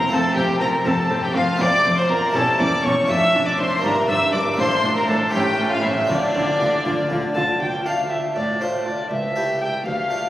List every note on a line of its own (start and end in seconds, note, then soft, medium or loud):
0.00 0.11 A#4 medium
0.00 0.11 A#5 loud
0.00 0.12 A#5 loud
0.08 0.19 F1 medium
0.08 0.34 F2 medium
0.08 1.54 A3 medium
0.08 1.55 C4 medium
0.08 1.56 F4 medium
0.08 0.36 A5 loud
0.12 0.20 F2 medium
0.12 0.20 C4 medium
0.12 0.35 A4 loud
0.12 0.37 A5 loud
0.35 0.44 F1 medium
0.35 0.58 F2 medium
0.35 0.44 F2 medium
0.35 0.44 C4 medium
0.35 0.59 G4 loud
0.35 0.44 G5 loud
0.35 0.61 G5 medium
0.60 0.69 F1 medium
0.60 0.83 F2 medium
0.60 0.70 F2 medium
0.60 0.69 C4 medium
0.60 0.87 A#4 medium
0.60 0.86 A#5 loud
0.60 0.69 A#5 loud
0.85 0.93 F1 medium
0.85 1.08 F2 medium
0.85 0.94 F2 medium
0.85 0.94 C4 medium
0.85 1.25 A4 medium
0.85 1.23 A5 medium
0.85 1.23 A5 loud
1.10 1.18 F1 medium
1.10 1.32 F2 medium
1.10 1.19 F2 medium
1.10 1.18 C4 medium
1.23 1.37 G4 medium
1.23 1.35 G5 medium
1.23 1.36 G5 loud
1.35 1.43 F1 medium
1.35 1.58 F2 medium
1.35 1.44 F2 medium
1.35 1.43 C4 medium
1.35 1.63 F4 loud
1.35 1.60 F5 loud
1.35 1.61 F5 loud
1.56 2.28 A3 medium
1.56 2.31 C4 medium
1.56 1.67 C4 medium
1.56 2.32 F4 medium
1.56 1.96 D6 loud
1.60 1.68 F1 medium
1.60 1.83 F2 medium
1.60 1.69 F2 medium
1.60 1.97 D5 loud
1.60 1.98 D6 loud
1.85 1.93 F1 medium
1.85 1.93 F2 medium
1.85 2.07 F2 medium
1.85 1.93 C4 medium
1.97 2.11 C5 medium
1.97 2.10 C6 loud
1.97 2.10 C6 medium
2.09 2.17 F1 medium
2.09 2.32 F2 medium
2.09 2.18 F2 medium
2.09 2.17 C4 medium
2.09 2.36 A#4 loud
2.09 2.35 A#5 loud
2.09 2.35 A#5 medium
2.30 3.03 A3 medium
2.30 3.05 C#4 medium
2.30 3.06 G4 medium
2.30 2.58 A5 loud
2.34 2.42 E1 medium
2.34 2.57 E2 medium
2.34 2.43 E2 medium
2.34 2.43 C#4 medium
2.34 2.61 A4 loud
2.34 2.59 A5 loud
2.59 2.67 E1 medium
2.59 2.82 E2 medium
2.59 2.67 E2 medium
2.59 2.68 C#4 medium
2.59 2.85 D5 medium
2.59 2.84 D6 loud
2.83 2.92 E1 medium
2.83 3.06 E2 medium
2.83 2.92 E2 medium
2.83 2.92 C#4 medium
2.83 3.08 C#5 medium
2.83 3.09 C#6 medium
2.83 3.09 C#6 loud
3.04 3.79 A3 medium
3.04 3.79 D4 medium
3.04 3.80 F4 medium
3.08 3.16 F1 medium
3.08 3.16 F2 medium
3.08 3.31 F2 medium
3.08 3.17 D4 medium
3.08 3.48 E5 loud
3.08 3.46 E6 loud
3.33 3.42 F1 medium
3.33 3.56 F2 medium
3.33 3.41 F2 medium
3.33 3.42 D4 medium
3.46 3.58 D5 medium
3.46 3.58 D6 loud
3.46 3.58 D6 medium
3.58 3.66 F1 medium
3.58 3.66 F2 medium
3.58 3.81 F2 medium
3.58 3.68 D4 medium
3.58 3.83 C5 loud
3.58 3.83 C6 loud
3.58 3.84 C6 medium
3.79 4.53 A#3 medium
3.79 4.54 D4 medium
3.79 4.55 E4 medium
3.83 3.91 G1 medium
3.83 3.91 G2 medium
3.83 4.06 G2 medium
3.83 3.92 D4 medium
3.83 4.10 A#4 medium
3.83 4.08 A#5 loud
3.83 4.09 A#5 loud
4.08 4.17 G1 medium
4.08 4.16 G2 medium
4.08 4.31 G2 medium
4.08 4.16 D4 medium
4.08 4.32 E5 loud
4.08 4.33 E6 loud
4.08 4.34 E6 medium
4.32 4.42 G1 medium
4.32 4.41 G2 medium
4.32 4.56 G2 medium
4.32 4.41 D4 medium
4.32 4.40 D5 loud
4.32 4.41 D6 loud
4.32 4.59 D6 loud
4.53 5.27 A3 medium
4.53 5.29 D4 medium
4.53 5.30 F4 medium
4.58 4.66 A1 medium
4.58 4.66 A2 medium
4.58 4.80 A2 medium
4.58 4.66 D4 medium
4.58 4.95 C5 loud
4.58 4.95 C6 loud
4.83 4.91 A1 medium
4.83 4.91 A2 medium
4.83 5.06 A2 medium
4.83 4.92 D4 medium
4.96 5.09 A#4 medium
4.96 5.09 A#5 medium
5.07 5.16 A1 medium
5.07 5.31 A2 medium
5.07 5.16 A2 medium
5.07 5.16 D4 medium
5.07 5.32 A4 medium
5.07 5.15 A5 medium
5.07 5.16 A5 loud
5.28 6.03 A3 medium
5.28 6.05 C#4 medium
5.28 6.06 E4 medium
5.28 5.70 G5 loud
5.33 5.42 A1 medium
5.33 5.56 A2 medium
5.33 5.42 A2 medium
5.33 5.41 C#4 medium
5.33 5.69 G4 medium
5.33 5.70 G5 loud
5.58 5.67 A1 medium
5.58 5.81 A2 medium
5.58 5.67 A2 medium
5.58 5.67 C#4 medium
5.70 5.75 F4 medium
5.70 5.83 F5 medium
5.81 5.92 A1 medium
5.81 6.06 A2 medium
5.81 5.92 A2 medium
5.81 5.92 C#4 medium
5.81 5.89 E4 medium
5.81 6.09 E5 loud
5.81 6.09 E5 medium
6.04 7.55 A3 medium
6.04 7.55 D4 medium
6.04 7.56 F4 medium
6.09 6.17 D2 medium
6.09 6.32 D3 medium
6.09 6.18 D3 medium
6.09 7.33 D4 loud
6.09 6.17 F4 medium
6.09 7.33 D5 loud
6.09 7.34 D5 medium
6.35 6.43 D2 medium
6.35 6.57 D3 medium
6.35 6.43 D3 medium
6.35 6.43 F4 medium
6.60 6.68 D2 medium
6.60 6.83 D3 medium
6.60 6.69 D3 medium
6.60 6.68 F4 medium
6.85 6.93 D2 medium
6.85 7.08 D3 medium
6.85 6.94 D3 medium
6.85 6.93 F4 medium
7.10 7.18 D2 medium
7.10 7.33 D3 medium
7.10 7.19 D3 medium
7.10 7.18 F4 medium
7.35 7.44 D2 medium
7.35 7.58 D3 medium
7.35 7.44 D3 medium
7.35 7.44 F4 medium
7.35 7.59 A5 medium
7.35 7.44 A5 medium
7.60 8.20 D2 soft
7.60 8.21 D2 soft
7.60 7.86 G5 soft
7.60 7.88 G5 medium
7.86 8.40 A3 soft
7.86 8.40 D4 soft
7.86 8.40 F4 soft
7.86 8.09 F5 medium
7.86 8.11 F5 soft
8.10 8.29 F4 soft
8.10 8.30 A4 soft
8.10 8.18 E5 medium
8.10 8.35 E5 soft
8.35 8.95 A2 soft
8.35 8.96 A2 soft
8.35 8.62 D5 medium
8.35 8.61 D5 soft
8.61 8.97 A3 soft
8.61 8.97 D4 soft
8.61 8.97 F4 soft
8.61 8.85 C5 medium
8.61 8.85 C5 soft
8.85 9.04 F4 soft
8.85 9.04 A4 soft
8.85 9.10 D5 medium
8.85 9.11 D5 soft
9.10 9.70 C#2 medium
9.10 9.70 C#2 soft
9.10 9.59 E5 medium
9.10 9.61 E5 soft
9.36 9.71 A3 soft
9.36 9.72 E4 soft
9.36 9.72 G4 soft
9.60 9.79 G4 soft
9.60 9.79 A4 soft
9.60 9.85 G5 medium
9.60 9.85 G5 soft
9.86 10.29 D2 medium
9.86 10.29 D2 soft
9.86 10.29 F5 medium
10.10 10.29 A3 soft
10.10 10.29 D4 soft
10.10 10.29 F4 soft